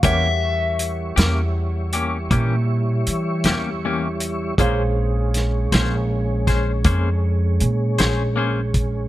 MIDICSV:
0, 0, Header, 1, 7, 480
1, 0, Start_track
1, 0, Tempo, 757576
1, 25, Time_signature, 12, 3, 24, 8
1, 5755, End_track
2, 0, Start_track
2, 0, Title_t, "Overdriven electric guitar"
2, 0, Program_c, 0, 29
2, 32, Note_on_c, 0, 76, 89
2, 1445, Note_off_c, 0, 76, 0
2, 5755, End_track
3, 0, Start_track
3, 0, Title_t, "Grand piano"
3, 0, Program_c, 1, 0
3, 18, Note_on_c, 1, 67, 48
3, 25, Note_on_c, 1, 70, 42
3, 32, Note_on_c, 1, 73, 43
3, 37, Note_on_c, 1, 78, 54
3, 2878, Note_off_c, 1, 67, 0
3, 2882, Note_off_c, 1, 70, 0
3, 2886, Note_off_c, 1, 73, 0
3, 2888, Note_off_c, 1, 78, 0
3, 2903, Note_on_c, 1, 68, 64
3, 2907, Note_on_c, 1, 72, 59
3, 2915, Note_on_c, 1, 73, 56
3, 2921, Note_on_c, 1, 77, 65
3, 5755, Note_off_c, 1, 68, 0
3, 5755, Note_off_c, 1, 72, 0
3, 5755, Note_off_c, 1, 73, 0
3, 5755, Note_off_c, 1, 77, 0
3, 5755, End_track
4, 0, Start_track
4, 0, Title_t, "Clean electric guitar"
4, 0, Program_c, 2, 27
4, 22, Note_on_c, 2, 52, 68
4, 23, Note_on_c, 2, 58, 73
4, 26, Note_on_c, 2, 61, 80
4, 29, Note_on_c, 2, 67, 74
4, 168, Note_off_c, 2, 52, 0
4, 168, Note_off_c, 2, 58, 0
4, 170, Note_off_c, 2, 61, 0
4, 171, Note_off_c, 2, 67, 0
4, 737, Note_on_c, 2, 67, 52
4, 746, Note_on_c, 2, 61, 47
4, 752, Note_on_c, 2, 58, 45
4, 885, Note_off_c, 2, 67, 0
4, 890, Note_off_c, 2, 61, 0
4, 893, Note_off_c, 2, 58, 0
4, 1226, Note_on_c, 2, 67, 54
4, 1235, Note_on_c, 2, 61, 43
4, 1237, Note_on_c, 2, 58, 42
4, 1370, Note_off_c, 2, 67, 0
4, 1375, Note_off_c, 2, 61, 0
4, 1376, Note_off_c, 2, 58, 0
4, 1462, Note_on_c, 2, 52, 63
4, 1464, Note_on_c, 2, 58, 76
4, 1471, Note_on_c, 2, 61, 84
4, 1476, Note_on_c, 2, 67, 80
4, 1608, Note_off_c, 2, 52, 0
4, 1609, Note_off_c, 2, 58, 0
4, 1613, Note_off_c, 2, 61, 0
4, 1615, Note_off_c, 2, 67, 0
4, 2190, Note_on_c, 2, 67, 59
4, 2202, Note_on_c, 2, 61, 45
4, 2206, Note_on_c, 2, 58, 49
4, 2332, Note_off_c, 2, 67, 0
4, 2338, Note_off_c, 2, 61, 0
4, 2341, Note_off_c, 2, 58, 0
4, 2439, Note_on_c, 2, 52, 61
4, 2442, Note_on_c, 2, 58, 66
4, 2443, Note_on_c, 2, 61, 66
4, 2451, Note_on_c, 2, 67, 60
4, 2577, Note_off_c, 2, 52, 0
4, 2579, Note_off_c, 2, 58, 0
4, 2579, Note_off_c, 2, 61, 0
4, 2583, Note_off_c, 2, 67, 0
4, 2910, Note_on_c, 2, 61, 85
4, 2911, Note_on_c, 2, 58, 83
4, 2917, Note_on_c, 2, 68, 88
4, 2918, Note_on_c, 2, 72, 87
4, 3053, Note_off_c, 2, 58, 0
4, 3053, Note_off_c, 2, 61, 0
4, 3056, Note_off_c, 2, 68, 0
4, 3057, Note_off_c, 2, 72, 0
4, 3627, Note_on_c, 2, 72, 51
4, 3634, Note_on_c, 2, 68, 47
4, 3642, Note_on_c, 2, 61, 47
4, 3771, Note_off_c, 2, 72, 0
4, 3775, Note_off_c, 2, 68, 0
4, 3779, Note_off_c, 2, 61, 0
4, 4104, Note_on_c, 2, 72, 49
4, 4111, Note_on_c, 2, 68, 43
4, 4117, Note_on_c, 2, 61, 39
4, 4249, Note_off_c, 2, 72, 0
4, 4253, Note_off_c, 2, 68, 0
4, 4256, Note_off_c, 2, 61, 0
4, 4339, Note_on_c, 2, 58, 69
4, 4344, Note_on_c, 2, 61, 68
4, 4347, Note_on_c, 2, 68, 69
4, 4351, Note_on_c, 2, 72, 74
4, 4487, Note_off_c, 2, 58, 0
4, 4490, Note_off_c, 2, 61, 0
4, 4491, Note_off_c, 2, 68, 0
4, 4493, Note_off_c, 2, 72, 0
4, 5060, Note_on_c, 2, 72, 43
4, 5068, Note_on_c, 2, 68, 47
4, 5073, Note_on_c, 2, 61, 46
4, 5207, Note_off_c, 2, 72, 0
4, 5211, Note_off_c, 2, 68, 0
4, 5214, Note_off_c, 2, 61, 0
4, 5296, Note_on_c, 2, 58, 58
4, 5303, Note_on_c, 2, 61, 63
4, 5308, Note_on_c, 2, 68, 61
4, 5312, Note_on_c, 2, 72, 63
4, 5445, Note_off_c, 2, 58, 0
4, 5448, Note_off_c, 2, 61, 0
4, 5451, Note_off_c, 2, 68, 0
4, 5453, Note_off_c, 2, 72, 0
4, 5755, End_track
5, 0, Start_track
5, 0, Title_t, "Tonewheel organ"
5, 0, Program_c, 3, 16
5, 17, Note_on_c, 3, 73, 61
5, 20, Note_on_c, 3, 64, 68
5, 25, Note_on_c, 3, 55, 61
5, 2878, Note_off_c, 3, 73, 0
5, 2880, Note_off_c, 3, 64, 0
5, 2882, Note_off_c, 3, 55, 0
5, 2905, Note_on_c, 3, 61, 62
5, 2907, Note_on_c, 3, 56, 62
5, 5755, Note_off_c, 3, 56, 0
5, 5755, Note_off_c, 3, 61, 0
5, 5755, End_track
6, 0, Start_track
6, 0, Title_t, "Upright bass"
6, 0, Program_c, 4, 32
6, 23, Note_on_c, 4, 40, 80
6, 719, Note_off_c, 4, 40, 0
6, 742, Note_on_c, 4, 40, 81
6, 1439, Note_off_c, 4, 40, 0
6, 1463, Note_on_c, 4, 46, 99
6, 1920, Note_off_c, 4, 46, 0
6, 1947, Note_on_c, 4, 52, 81
6, 2168, Note_off_c, 4, 52, 0
6, 2182, Note_on_c, 4, 40, 79
6, 2879, Note_off_c, 4, 40, 0
6, 2904, Note_on_c, 4, 34, 86
6, 3600, Note_off_c, 4, 34, 0
6, 3625, Note_on_c, 4, 34, 86
6, 4321, Note_off_c, 4, 34, 0
6, 4337, Note_on_c, 4, 41, 94
6, 4796, Note_off_c, 4, 41, 0
6, 4822, Note_on_c, 4, 46, 84
6, 5045, Note_off_c, 4, 46, 0
6, 5062, Note_on_c, 4, 34, 71
6, 5755, Note_off_c, 4, 34, 0
6, 5755, End_track
7, 0, Start_track
7, 0, Title_t, "Drums"
7, 17, Note_on_c, 9, 42, 82
7, 19, Note_on_c, 9, 36, 107
7, 81, Note_off_c, 9, 42, 0
7, 83, Note_off_c, 9, 36, 0
7, 501, Note_on_c, 9, 42, 58
7, 564, Note_off_c, 9, 42, 0
7, 743, Note_on_c, 9, 42, 84
7, 755, Note_on_c, 9, 38, 101
7, 807, Note_off_c, 9, 42, 0
7, 819, Note_off_c, 9, 38, 0
7, 1220, Note_on_c, 9, 42, 50
7, 1283, Note_off_c, 9, 42, 0
7, 1462, Note_on_c, 9, 36, 99
7, 1462, Note_on_c, 9, 42, 77
7, 1525, Note_off_c, 9, 42, 0
7, 1526, Note_off_c, 9, 36, 0
7, 1942, Note_on_c, 9, 42, 59
7, 2006, Note_off_c, 9, 42, 0
7, 2178, Note_on_c, 9, 42, 76
7, 2190, Note_on_c, 9, 38, 98
7, 2241, Note_off_c, 9, 42, 0
7, 2253, Note_off_c, 9, 38, 0
7, 2662, Note_on_c, 9, 42, 55
7, 2725, Note_off_c, 9, 42, 0
7, 2903, Note_on_c, 9, 36, 97
7, 2906, Note_on_c, 9, 42, 79
7, 2967, Note_off_c, 9, 36, 0
7, 2969, Note_off_c, 9, 42, 0
7, 3384, Note_on_c, 9, 42, 55
7, 3396, Note_on_c, 9, 38, 31
7, 3448, Note_off_c, 9, 42, 0
7, 3460, Note_off_c, 9, 38, 0
7, 3625, Note_on_c, 9, 42, 71
7, 3637, Note_on_c, 9, 38, 106
7, 3688, Note_off_c, 9, 42, 0
7, 3700, Note_off_c, 9, 38, 0
7, 4101, Note_on_c, 9, 36, 69
7, 4101, Note_on_c, 9, 42, 51
7, 4113, Note_on_c, 9, 38, 27
7, 4164, Note_off_c, 9, 36, 0
7, 4165, Note_off_c, 9, 42, 0
7, 4177, Note_off_c, 9, 38, 0
7, 4336, Note_on_c, 9, 42, 71
7, 4340, Note_on_c, 9, 36, 104
7, 4399, Note_off_c, 9, 42, 0
7, 4403, Note_off_c, 9, 36, 0
7, 4817, Note_on_c, 9, 42, 51
7, 4880, Note_off_c, 9, 42, 0
7, 5058, Note_on_c, 9, 42, 69
7, 5070, Note_on_c, 9, 38, 101
7, 5121, Note_off_c, 9, 42, 0
7, 5133, Note_off_c, 9, 38, 0
7, 5538, Note_on_c, 9, 42, 58
7, 5539, Note_on_c, 9, 36, 68
7, 5601, Note_off_c, 9, 42, 0
7, 5603, Note_off_c, 9, 36, 0
7, 5755, End_track
0, 0, End_of_file